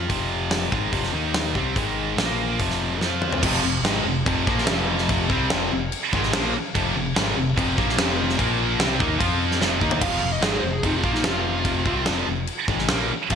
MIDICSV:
0, 0, Header, 1, 8, 480
1, 0, Start_track
1, 0, Tempo, 415800
1, 115, Time_signature, 4, 2, 24, 8
1, 5875, Tempo, 411241
1, 15518, End_track
2, 0, Start_track
2, 0, Title_t, "Lead electric guitar"
2, 0, Program_c, 0, 29
2, 11628, Note_on_c, 0, 77, 93
2, 11943, Note_off_c, 0, 77, 0
2, 11981, Note_on_c, 0, 75, 83
2, 12125, Note_off_c, 0, 75, 0
2, 12138, Note_on_c, 0, 68, 89
2, 12283, Note_off_c, 0, 68, 0
2, 12288, Note_on_c, 0, 72, 81
2, 12424, Note_on_c, 0, 68, 70
2, 12438, Note_off_c, 0, 72, 0
2, 12586, Note_off_c, 0, 68, 0
2, 12597, Note_on_c, 0, 63, 85
2, 12741, Note_off_c, 0, 63, 0
2, 12746, Note_on_c, 0, 65, 76
2, 12907, Note_off_c, 0, 65, 0
2, 12925, Note_on_c, 0, 63, 78
2, 13067, Note_off_c, 0, 63, 0
2, 13067, Note_on_c, 0, 65, 99
2, 14003, Note_off_c, 0, 65, 0
2, 15518, End_track
3, 0, Start_track
3, 0, Title_t, "Distorted electric guitar"
3, 0, Program_c, 1, 30
3, 90, Note_on_c, 1, 41, 95
3, 92, Note_on_c, 1, 48, 92
3, 93, Note_on_c, 1, 53, 93
3, 813, Note_off_c, 1, 48, 0
3, 814, Note_off_c, 1, 41, 0
3, 816, Note_off_c, 1, 53, 0
3, 818, Note_on_c, 1, 44, 88
3, 818, Note_on_c, 1, 51, 95
3, 820, Note_on_c, 1, 56, 90
3, 1061, Note_off_c, 1, 44, 0
3, 1061, Note_off_c, 1, 51, 0
3, 1062, Note_off_c, 1, 56, 0
3, 1067, Note_on_c, 1, 41, 75
3, 1077, Note_on_c, 1, 48, 88
3, 1078, Note_on_c, 1, 53, 90
3, 1300, Note_off_c, 1, 48, 0
3, 1303, Note_off_c, 1, 53, 0
3, 1305, Note_on_c, 1, 51, 87
3, 1306, Note_off_c, 1, 41, 0
3, 1308, Note_on_c, 1, 58, 81
3, 1312, Note_on_c, 1, 63, 83
3, 1786, Note_off_c, 1, 51, 0
3, 1787, Note_off_c, 1, 58, 0
3, 1789, Note_off_c, 1, 63, 0
3, 1797, Note_on_c, 1, 48, 81
3, 1803, Note_on_c, 1, 55, 85
3, 1809, Note_on_c, 1, 60, 90
3, 2024, Note_off_c, 1, 48, 0
3, 2029, Note_on_c, 1, 44, 85
3, 2029, Note_on_c, 1, 51, 87
3, 2032, Note_off_c, 1, 55, 0
3, 2036, Note_on_c, 1, 56, 99
3, 2038, Note_off_c, 1, 60, 0
3, 2508, Note_off_c, 1, 44, 0
3, 2509, Note_off_c, 1, 51, 0
3, 2512, Note_off_c, 1, 56, 0
3, 2526, Note_on_c, 1, 46, 86
3, 2526, Note_on_c, 1, 53, 90
3, 2532, Note_on_c, 1, 58, 106
3, 2997, Note_off_c, 1, 46, 0
3, 2997, Note_off_c, 1, 53, 0
3, 3000, Note_off_c, 1, 58, 0
3, 3002, Note_on_c, 1, 41, 87
3, 3011, Note_on_c, 1, 53, 87
3, 3012, Note_on_c, 1, 48, 88
3, 3475, Note_off_c, 1, 48, 0
3, 3475, Note_off_c, 1, 53, 0
3, 3475, Note_on_c, 1, 53, 76
3, 3476, Note_off_c, 1, 41, 0
3, 3479, Note_on_c, 1, 60, 80
3, 3489, Note_on_c, 1, 65, 85
3, 3952, Note_off_c, 1, 53, 0
3, 3953, Note_off_c, 1, 60, 0
3, 3959, Note_off_c, 1, 65, 0
3, 3973, Note_on_c, 1, 41, 89
3, 3983, Note_on_c, 1, 48, 89
3, 3990, Note_on_c, 1, 53, 92
3, 4190, Note_off_c, 1, 41, 0
3, 4191, Note_off_c, 1, 48, 0
3, 4204, Note_on_c, 1, 41, 63
3, 4205, Note_on_c, 1, 48, 73
3, 4209, Note_off_c, 1, 53, 0
3, 4395, Note_off_c, 1, 41, 0
3, 4395, Note_off_c, 1, 48, 0
3, 4434, Note_on_c, 1, 44, 97
3, 4443, Note_on_c, 1, 51, 95
3, 4448, Note_on_c, 1, 56, 111
3, 4670, Note_off_c, 1, 44, 0
3, 4675, Note_off_c, 1, 51, 0
3, 4677, Note_off_c, 1, 56, 0
3, 4683, Note_on_c, 1, 48, 76
3, 4689, Note_on_c, 1, 41, 61
3, 4874, Note_off_c, 1, 48, 0
3, 4877, Note_off_c, 1, 41, 0
3, 4916, Note_on_c, 1, 41, 98
3, 4926, Note_on_c, 1, 48, 89
3, 4931, Note_on_c, 1, 53, 95
3, 5150, Note_off_c, 1, 41, 0
3, 5151, Note_off_c, 1, 53, 0
3, 5152, Note_off_c, 1, 48, 0
3, 5157, Note_on_c, 1, 46, 87
3, 5165, Note_on_c, 1, 53, 91
3, 5168, Note_on_c, 1, 58, 92
3, 5368, Note_off_c, 1, 53, 0
3, 5368, Note_on_c, 1, 41, 89
3, 5374, Note_off_c, 1, 46, 0
3, 5378, Note_on_c, 1, 48, 96
3, 5382, Note_on_c, 1, 53, 91
3, 5396, Note_off_c, 1, 58, 0
3, 6091, Note_off_c, 1, 48, 0
3, 6094, Note_off_c, 1, 41, 0
3, 6100, Note_off_c, 1, 53, 0
3, 6105, Note_on_c, 1, 48, 90
3, 6105, Note_on_c, 1, 55, 98
3, 6119, Note_on_c, 1, 60, 103
3, 6344, Note_off_c, 1, 48, 0
3, 6344, Note_off_c, 1, 55, 0
3, 6351, Note_off_c, 1, 60, 0
3, 6359, Note_on_c, 1, 41, 95
3, 6364, Note_on_c, 1, 48, 98
3, 6370, Note_on_c, 1, 53, 108
3, 6592, Note_off_c, 1, 41, 0
3, 6594, Note_off_c, 1, 48, 0
3, 6597, Note_off_c, 1, 53, 0
3, 6608, Note_on_c, 1, 48, 72
3, 6611, Note_on_c, 1, 41, 58
3, 6796, Note_off_c, 1, 48, 0
3, 6798, Note_off_c, 1, 41, 0
3, 7087, Note_on_c, 1, 51, 96
3, 7088, Note_on_c, 1, 44, 88
3, 7096, Note_on_c, 1, 56, 99
3, 7316, Note_off_c, 1, 51, 0
3, 7317, Note_off_c, 1, 44, 0
3, 7321, Note_off_c, 1, 56, 0
3, 7326, Note_on_c, 1, 46, 86
3, 7330, Note_on_c, 1, 53, 102
3, 7340, Note_on_c, 1, 58, 93
3, 7556, Note_off_c, 1, 46, 0
3, 7558, Note_off_c, 1, 53, 0
3, 7563, Note_off_c, 1, 58, 0
3, 7810, Note_on_c, 1, 41, 93
3, 7818, Note_on_c, 1, 48, 96
3, 7822, Note_on_c, 1, 53, 102
3, 8038, Note_off_c, 1, 41, 0
3, 8042, Note_off_c, 1, 48, 0
3, 8044, Note_off_c, 1, 53, 0
3, 8058, Note_on_c, 1, 41, 73
3, 8067, Note_on_c, 1, 48, 70
3, 8242, Note_off_c, 1, 41, 0
3, 8246, Note_off_c, 1, 48, 0
3, 8293, Note_on_c, 1, 51, 105
3, 8295, Note_on_c, 1, 44, 100
3, 8297, Note_on_c, 1, 56, 104
3, 8520, Note_off_c, 1, 51, 0
3, 8521, Note_off_c, 1, 44, 0
3, 8522, Note_off_c, 1, 56, 0
3, 8527, Note_on_c, 1, 41, 67
3, 8536, Note_on_c, 1, 48, 76
3, 8716, Note_off_c, 1, 41, 0
3, 8720, Note_off_c, 1, 48, 0
3, 8758, Note_on_c, 1, 41, 94
3, 8766, Note_on_c, 1, 53, 101
3, 8771, Note_on_c, 1, 48, 88
3, 8986, Note_off_c, 1, 53, 0
3, 8992, Note_off_c, 1, 41, 0
3, 8996, Note_off_c, 1, 48, 0
3, 9001, Note_on_c, 1, 46, 98
3, 9001, Note_on_c, 1, 53, 93
3, 9003, Note_on_c, 1, 58, 106
3, 9233, Note_off_c, 1, 46, 0
3, 9233, Note_off_c, 1, 53, 0
3, 9234, Note_off_c, 1, 58, 0
3, 9238, Note_on_c, 1, 41, 92
3, 9247, Note_on_c, 1, 53, 94
3, 9251, Note_on_c, 1, 48, 90
3, 9703, Note_off_c, 1, 53, 0
3, 9706, Note_off_c, 1, 48, 0
3, 9711, Note_on_c, 1, 46, 86
3, 9712, Note_off_c, 1, 41, 0
3, 9717, Note_on_c, 1, 53, 105
3, 9717, Note_on_c, 1, 58, 99
3, 10187, Note_off_c, 1, 46, 0
3, 10191, Note_off_c, 1, 53, 0
3, 10191, Note_off_c, 1, 58, 0
3, 10205, Note_on_c, 1, 48, 96
3, 10212, Note_on_c, 1, 55, 100
3, 10213, Note_on_c, 1, 60, 108
3, 10430, Note_off_c, 1, 48, 0
3, 10435, Note_on_c, 1, 51, 99
3, 10438, Note_off_c, 1, 55, 0
3, 10438, Note_off_c, 1, 60, 0
3, 10443, Note_on_c, 1, 63, 101
3, 10449, Note_on_c, 1, 58, 96
3, 10655, Note_off_c, 1, 51, 0
3, 10658, Note_off_c, 1, 58, 0
3, 10660, Note_off_c, 1, 63, 0
3, 10660, Note_on_c, 1, 53, 87
3, 10663, Note_on_c, 1, 60, 103
3, 10664, Note_on_c, 1, 65, 106
3, 11142, Note_off_c, 1, 53, 0
3, 11143, Note_off_c, 1, 60, 0
3, 11144, Note_off_c, 1, 65, 0
3, 11149, Note_on_c, 1, 41, 78
3, 11149, Note_on_c, 1, 48, 99
3, 11159, Note_on_c, 1, 53, 93
3, 11386, Note_off_c, 1, 41, 0
3, 11386, Note_off_c, 1, 48, 0
3, 11391, Note_off_c, 1, 53, 0
3, 11394, Note_on_c, 1, 51, 76
3, 11404, Note_on_c, 1, 58, 90
3, 11405, Note_on_c, 1, 63, 99
3, 11629, Note_off_c, 1, 51, 0
3, 11633, Note_off_c, 1, 58, 0
3, 11634, Note_off_c, 1, 63, 0
3, 11637, Note_on_c, 1, 41, 85
3, 11639, Note_on_c, 1, 48, 91
3, 11649, Note_on_c, 1, 53, 91
3, 11849, Note_off_c, 1, 41, 0
3, 11855, Note_off_c, 1, 48, 0
3, 11863, Note_on_c, 1, 41, 60
3, 11869, Note_on_c, 1, 48, 72
3, 11876, Note_off_c, 1, 53, 0
3, 12062, Note_off_c, 1, 41, 0
3, 12065, Note_off_c, 1, 48, 0
3, 12088, Note_on_c, 1, 44, 91
3, 12098, Note_on_c, 1, 51, 96
3, 12102, Note_on_c, 1, 56, 109
3, 12335, Note_off_c, 1, 44, 0
3, 12340, Note_off_c, 1, 51, 0
3, 12340, Note_on_c, 1, 41, 62
3, 12343, Note_off_c, 1, 56, 0
3, 12352, Note_on_c, 1, 48, 76
3, 12541, Note_off_c, 1, 41, 0
3, 12546, Note_off_c, 1, 48, 0
3, 12563, Note_on_c, 1, 41, 88
3, 12580, Note_on_c, 1, 48, 95
3, 12581, Note_on_c, 1, 53, 95
3, 12813, Note_off_c, 1, 41, 0
3, 12813, Note_off_c, 1, 48, 0
3, 12813, Note_off_c, 1, 53, 0
3, 12817, Note_on_c, 1, 46, 88
3, 12826, Note_on_c, 1, 58, 87
3, 12827, Note_on_c, 1, 53, 91
3, 13054, Note_off_c, 1, 53, 0
3, 13059, Note_on_c, 1, 41, 85
3, 13060, Note_off_c, 1, 46, 0
3, 13065, Note_off_c, 1, 58, 0
3, 13068, Note_on_c, 1, 48, 91
3, 13068, Note_on_c, 1, 53, 90
3, 13772, Note_off_c, 1, 48, 0
3, 13781, Note_off_c, 1, 41, 0
3, 13782, Note_off_c, 1, 53, 0
3, 13786, Note_on_c, 1, 48, 99
3, 13787, Note_on_c, 1, 55, 96
3, 13793, Note_on_c, 1, 60, 105
3, 14008, Note_off_c, 1, 48, 0
3, 14014, Note_on_c, 1, 41, 91
3, 14020, Note_off_c, 1, 55, 0
3, 14022, Note_on_c, 1, 48, 92
3, 14024, Note_on_c, 1, 53, 117
3, 14028, Note_off_c, 1, 60, 0
3, 14236, Note_off_c, 1, 41, 0
3, 14238, Note_off_c, 1, 48, 0
3, 14250, Note_on_c, 1, 41, 67
3, 14252, Note_on_c, 1, 48, 68
3, 14264, Note_off_c, 1, 53, 0
3, 14456, Note_off_c, 1, 41, 0
3, 14456, Note_off_c, 1, 48, 0
3, 14742, Note_on_c, 1, 44, 80
3, 14745, Note_on_c, 1, 51, 90
3, 14749, Note_on_c, 1, 56, 100
3, 14978, Note_off_c, 1, 51, 0
3, 14981, Note_off_c, 1, 56, 0
3, 14982, Note_off_c, 1, 44, 0
3, 14983, Note_on_c, 1, 46, 82
3, 14985, Note_on_c, 1, 53, 95
3, 14995, Note_on_c, 1, 58, 98
3, 15223, Note_off_c, 1, 46, 0
3, 15224, Note_off_c, 1, 53, 0
3, 15229, Note_off_c, 1, 58, 0
3, 15457, Note_on_c, 1, 41, 82
3, 15464, Note_on_c, 1, 48, 85
3, 15469, Note_on_c, 1, 53, 99
3, 15518, Note_off_c, 1, 41, 0
3, 15518, Note_off_c, 1, 48, 0
3, 15518, Note_off_c, 1, 53, 0
3, 15518, End_track
4, 0, Start_track
4, 0, Title_t, "Distorted electric guitar"
4, 0, Program_c, 2, 30
4, 0, Note_on_c, 2, 65, 86
4, 118, Note_off_c, 2, 65, 0
4, 5420, Note_on_c, 2, 41, 83
4, 5427, Note_on_c, 2, 48, 98
4, 5434, Note_on_c, 2, 53, 106
4, 6121, Note_off_c, 2, 41, 0
4, 6124, Note_off_c, 2, 48, 0
4, 6128, Note_off_c, 2, 53, 0
4, 15518, End_track
5, 0, Start_track
5, 0, Title_t, "Fingered electric bass"
5, 0, Program_c, 3, 33
5, 110, Note_on_c, 3, 29, 92
5, 788, Note_off_c, 3, 29, 0
5, 830, Note_on_c, 3, 32, 89
5, 1057, Note_off_c, 3, 32, 0
5, 1068, Note_on_c, 3, 29, 99
5, 1296, Note_off_c, 3, 29, 0
5, 1322, Note_on_c, 3, 39, 81
5, 1768, Note_off_c, 3, 39, 0
5, 1787, Note_on_c, 3, 36, 89
5, 2017, Note_off_c, 3, 36, 0
5, 2030, Note_on_c, 3, 32, 87
5, 2482, Note_off_c, 3, 32, 0
5, 2510, Note_on_c, 3, 34, 87
5, 2963, Note_off_c, 3, 34, 0
5, 2991, Note_on_c, 3, 29, 95
5, 3443, Note_off_c, 3, 29, 0
5, 3464, Note_on_c, 3, 41, 98
5, 3919, Note_off_c, 3, 41, 0
5, 3953, Note_on_c, 3, 29, 94
5, 4180, Note_off_c, 3, 29, 0
5, 4189, Note_on_c, 3, 29, 71
5, 4414, Note_off_c, 3, 29, 0
5, 4421, Note_on_c, 3, 32, 104
5, 4653, Note_off_c, 3, 32, 0
5, 4670, Note_on_c, 3, 29, 82
5, 4898, Note_off_c, 3, 29, 0
5, 4925, Note_on_c, 3, 29, 101
5, 5145, Note_off_c, 3, 29, 0
5, 5161, Note_on_c, 3, 34, 92
5, 5383, Note_off_c, 3, 34, 0
5, 5393, Note_on_c, 3, 29, 100
5, 6067, Note_off_c, 3, 29, 0
5, 6114, Note_on_c, 3, 36, 97
5, 6340, Note_off_c, 3, 36, 0
5, 6374, Note_on_c, 3, 29, 95
5, 6590, Note_off_c, 3, 29, 0
5, 6619, Note_on_c, 3, 29, 77
5, 6833, Note_off_c, 3, 29, 0
5, 7093, Note_on_c, 3, 32, 95
5, 7310, Note_off_c, 3, 32, 0
5, 7345, Note_on_c, 3, 34, 105
5, 7557, Note_off_c, 3, 34, 0
5, 7811, Note_on_c, 3, 29, 96
5, 8030, Note_off_c, 3, 29, 0
5, 8049, Note_on_c, 3, 29, 76
5, 8269, Note_off_c, 3, 29, 0
5, 8297, Note_on_c, 3, 32, 94
5, 8513, Note_off_c, 3, 32, 0
5, 8541, Note_on_c, 3, 29, 77
5, 8754, Note_off_c, 3, 29, 0
5, 8775, Note_on_c, 3, 29, 96
5, 8991, Note_off_c, 3, 29, 0
5, 9018, Note_on_c, 3, 34, 94
5, 9233, Note_off_c, 3, 34, 0
5, 9264, Note_on_c, 3, 29, 106
5, 9699, Note_off_c, 3, 29, 0
5, 9722, Note_on_c, 3, 34, 101
5, 10167, Note_off_c, 3, 34, 0
5, 10201, Note_on_c, 3, 36, 91
5, 10423, Note_off_c, 3, 36, 0
5, 10433, Note_on_c, 3, 39, 94
5, 10659, Note_off_c, 3, 39, 0
5, 10683, Note_on_c, 3, 41, 92
5, 11127, Note_off_c, 3, 41, 0
5, 11137, Note_on_c, 3, 29, 110
5, 11370, Note_off_c, 3, 29, 0
5, 11387, Note_on_c, 3, 39, 92
5, 11613, Note_off_c, 3, 39, 0
5, 11620, Note_on_c, 3, 29, 92
5, 11846, Note_off_c, 3, 29, 0
5, 11853, Note_on_c, 3, 29, 78
5, 12079, Note_off_c, 3, 29, 0
5, 12086, Note_on_c, 3, 32, 92
5, 12324, Note_off_c, 3, 32, 0
5, 12344, Note_on_c, 3, 29, 81
5, 12568, Note_off_c, 3, 29, 0
5, 12575, Note_on_c, 3, 29, 104
5, 12809, Note_off_c, 3, 29, 0
5, 12815, Note_on_c, 3, 34, 89
5, 13044, Note_off_c, 3, 34, 0
5, 13051, Note_on_c, 3, 29, 97
5, 13738, Note_off_c, 3, 29, 0
5, 13770, Note_on_c, 3, 36, 87
5, 14006, Note_off_c, 3, 36, 0
5, 14013, Note_on_c, 3, 29, 90
5, 14247, Note_off_c, 3, 29, 0
5, 14259, Note_on_c, 3, 29, 83
5, 14491, Note_off_c, 3, 29, 0
5, 14736, Note_on_c, 3, 32, 89
5, 14969, Note_off_c, 3, 32, 0
5, 14979, Note_on_c, 3, 34, 99
5, 15211, Note_off_c, 3, 34, 0
5, 15455, Note_on_c, 3, 29, 98
5, 15518, Note_off_c, 3, 29, 0
5, 15518, End_track
6, 0, Start_track
6, 0, Title_t, "Muted distorted electric guitar strokes"
6, 7562, Note_on_c, 9, 29, 59
6, 7679, Note_off_c, 9, 29, 0
6, 15232, Note_on_c, 9, 29, 57
6, 15349, Note_off_c, 9, 29, 0
6, 15518, End_track
7, 0, Start_track
7, 0, Title_t, "Muted fingered electric bass strokes"
7, 7576, Note_on_c, 9, 29, 43
7, 7693, Note_off_c, 9, 29, 0
7, 15222, Note_on_c, 9, 29, 41
7, 15339, Note_off_c, 9, 29, 0
7, 15518, End_track
8, 0, Start_track
8, 0, Title_t, "Drums"
8, 113, Note_on_c, 9, 36, 104
8, 120, Note_on_c, 9, 46, 55
8, 228, Note_off_c, 9, 36, 0
8, 235, Note_off_c, 9, 46, 0
8, 589, Note_on_c, 9, 38, 94
8, 589, Note_on_c, 9, 46, 47
8, 704, Note_off_c, 9, 38, 0
8, 704, Note_off_c, 9, 46, 0
8, 834, Note_on_c, 9, 36, 104
8, 949, Note_off_c, 9, 36, 0
8, 1071, Note_on_c, 9, 36, 91
8, 1072, Note_on_c, 9, 46, 52
8, 1187, Note_off_c, 9, 36, 0
8, 1187, Note_off_c, 9, 46, 0
8, 1195, Note_on_c, 9, 38, 31
8, 1311, Note_off_c, 9, 38, 0
8, 1552, Note_on_c, 9, 38, 100
8, 1552, Note_on_c, 9, 46, 54
8, 1667, Note_off_c, 9, 38, 0
8, 1667, Note_off_c, 9, 46, 0
8, 1791, Note_on_c, 9, 36, 91
8, 1907, Note_off_c, 9, 36, 0
8, 2033, Note_on_c, 9, 36, 97
8, 2041, Note_on_c, 9, 46, 45
8, 2148, Note_off_c, 9, 36, 0
8, 2157, Note_off_c, 9, 46, 0
8, 2522, Note_on_c, 9, 38, 88
8, 2522, Note_on_c, 9, 46, 47
8, 2637, Note_off_c, 9, 38, 0
8, 2637, Note_off_c, 9, 46, 0
8, 2996, Note_on_c, 9, 36, 93
8, 3001, Note_on_c, 9, 46, 52
8, 3112, Note_off_c, 9, 36, 0
8, 3117, Note_off_c, 9, 46, 0
8, 3119, Note_on_c, 9, 38, 34
8, 3235, Note_off_c, 9, 38, 0
8, 3478, Note_on_c, 9, 38, 57
8, 3594, Note_off_c, 9, 38, 0
8, 3714, Note_on_c, 9, 45, 77
8, 3829, Note_off_c, 9, 45, 0
8, 3838, Note_on_c, 9, 43, 88
8, 3954, Note_off_c, 9, 43, 0
8, 3958, Note_on_c, 9, 36, 115
8, 3959, Note_on_c, 9, 49, 115
8, 3959, Note_on_c, 9, 57, 66
8, 4074, Note_off_c, 9, 36, 0
8, 4074, Note_off_c, 9, 49, 0
8, 4074, Note_off_c, 9, 57, 0
8, 4442, Note_on_c, 9, 38, 99
8, 4442, Note_on_c, 9, 57, 59
8, 4558, Note_off_c, 9, 38, 0
8, 4558, Note_off_c, 9, 57, 0
8, 4921, Note_on_c, 9, 57, 62
8, 4922, Note_on_c, 9, 36, 116
8, 5036, Note_off_c, 9, 57, 0
8, 5037, Note_off_c, 9, 36, 0
8, 5163, Note_on_c, 9, 36, 106
8, 5279, Note_off_c, 9, 36, 0
8, 5293, Note_on_c, 9, 38, 39
8, 5390, Note_off_c, 9, 38, 0
8, 5390, Note_on_c, 9, 38, 117
8, 5390, Note_on_c, 9, 57, 64
8, 5506, Note_off_c, 9, 38, 0
8, 5506, Note_off_c, 9, 57, 0
8, 5752, Note_on_c, 9, 38, 37
8, 5867, Note_off_c, 9, 38, 0
8, 5878, Note_on_c, 9, 57, 62
8, 5879, Note_on_c, 9, 36, 114
8, 5994, Note_off_c, 9, 57, 0
8, 5996, Note_off_c, 9, 36, 0
8, 6118, Note_on_c, 9, 36, 108
8, 6235, Note_off_c, 9, 36, 0
8, 6358, Note_on_c, 9, 38, 100
8, 6358, Note_on_c, 9, 57, 58
8, 6475, Note_off_c, 9, 38, 0
8, 6475, Note_off_c, 9, 57, 0
8, 6845, Note_on_c, 9, 57, 68
8, 6962, Note_off_c, 9, 57, 0
8, 7089, Note_on_c, 9, 36, 109
8, 7206, Note_off_c, 9, 36, 0
8, 7208, Note_on_c, 9, 38, 37
8, 7325, Note_off_c, 9, 38, 0
8, 7328, Note_on_c, 9, 38, 127
8, 7328, Note_on_c, 9, 57, 67
8, 7445, Note_off_c, 9, 38, 0
8, 7445, Note_off_c, 9, 57, 0
8, 7816, Note_on_c, 9, 36, 108
8, 7817, Note_on_c, 9, 57, 69
8, 7932, Note_off_c, 9, 36, 0
8, 7933, Note_off_c, 9, 57, 0
8, 8297, Note_on_c, 9, 38, 103
8, 8297, Note_on_c, 9, 57, 60
8, 8413, Note_off_c, 9, 38, 0
8, 8413, Note_off_c, 9, 57, 0
8, 8777, Note_on_c, 9, 36, 112
8, 8787, Note_on_c, 9, 57, 65
8, 8893, Note_off_c, 9, 36, 0
8, 8904, Note_off_c, 9, 57, 0
8, 9017, Note_on_c, 9, 36, 105
8, 9134, Note_off_c, 9, 36, 0
8, 9148, Note_on_c, 9, 38, 38
8, 9256, Note_off_c, 9, 38, 0
8, 9256, Note_on_c, 9, 38, 114
8, 9256, Note_on_c, 9, 57, 64
8, 9372, Note_off_c, 9, 38, 0
8, 9372, Note_off_c, 9, 57, 0
8, 9615, Note_on_c, 9, 38, 39
8, 9727, Note_on_c, 9, 36, 102
8, 9727, Note_on_c, 9, 57, 59
8, 9732, Note_off_c, 9, 38, 0
8, 9844, Note_off_c, 9, 36, 0
8, 9844, Note_off_c, 9, 57, 0
8, 10205, Note_on_c, 9, 38, 99
8, 10205, Note_on_c, 9, 57, 55
8, 10322, Note_off_c, 9, 38, 0
8, 10322, Note_off_c, 9, 57, 0
8, 10443, Note_on_c, 9, 36, 117
8, 10560, Note_off_c, 9, 36, 0
8, 10679, Note_on_c, 9, 36, 109
8, 10683, Note_on_c, 9, 57, 63
8, 10796, Note_off_c, 9, 36, 0
8, 10800, Note_off_c, 9, 57, 0
8, 11039, Note_on_c, 9, 38, 37
8, 11156, Note_off_c, 9, 38, 0
8, 11157, Note_on_c, 9, 38, 69
8, 11273, Note_off_c, 9, 38, 0
8, 11390, Note_on_c, 9, 36, 85
8, 11504, Note_on_c, 9, 43, 102
8, 11506, Note_off_c, 9, 36, 0
8, 11620, Note_off_c, 9, 43, 0
8, 11624, Note_on_c, 9, 36, 104
8, 11624, Note_on_c, 9, 49, 105
8, 11624, Note_on_c, 9, 57, 63
8, 11740, Note_off_c, 9, 49, 0
8, 11740, Note_off_c, 9, 57, 0
8, 11741, Note_off_c, 9, 36, 0
8, 12104, Note_on_c, 9, 38, 96
8, 12104, Note_on_c, 9, 57, 51
8, 12220, Note_off_c, 9, 38, 0
8, 12220, Note_off_c, 9, 57, 0
8, 12579, Note_on_c, 9, 57, 58
8, 12580, Note_on_c, 9, 36, 100
8, 12696, Note_off_c, 9, 57, 0
8, 12697, Note_off_c, 9, 36, 0
8, 12816, Note_on_c, 9, 36, 98
8, 12933, Note_off_c, 9, 36, 0
8, 12948, Note_on_c, 9, 38, 37
8, 13055, Note_off_c, 9, 38, 0
8, 13055, Note_on_c, 9, 38, 112
8, 13055, Note_on_c, 9, 57, 59
8, 13171, Note_off_c, 9, 38, 0
8, 13171, Note_off_c, 9, 57, 0
8, 13531, Note_on_c, 9, 36, 97
8, 13531, Note_on_c, 9, 57, 55
8, 13648, Note_off_c, 9, 36, 0
8, 13648, Note_off_c, 9, 57, 0
8, 13773, Note_on_c, 9, 36, 94
8, 13890, Note_off_c, 9, 36, 0
8, 14011, Note_on_c, 9, 38, 99
8, 14011, Note_on_c, 9, 57, 52
8, 14127, Note_off_c, 9, 38, 0
8, 14127, Note_off_c, 9, 57, 0
8, 14493, Note_on_c, 9, 57, 57
8, 14610, Note_off_c, 9, 57, 0
8, 14735, Note_on_c, 9, 36, 111
8, 14852, Note_off_c, 9, 36, 0
8, 14859, Note_on_c, 9, 38, 37
8, 14976, Note_off_c, 9, 38, 0
8, 14976, Note_on_c, 9, 38, 104
8, 14976, Note_on_c, 9, 57, 62
8, 15093, Note_off_c, 9, 38, 0
8, 15093, Note_off_c, 9, 57, 0
8, 15458, Note_on_c, 9, 57, 66
8, 15464, Note_on_c, 9, 36, 100
8, 15518, Note_off_c, 9, 36, 0
8, 15518, Note_off_c, 9, 57, 0
8, 15518, End_track
0, 0, End_of_file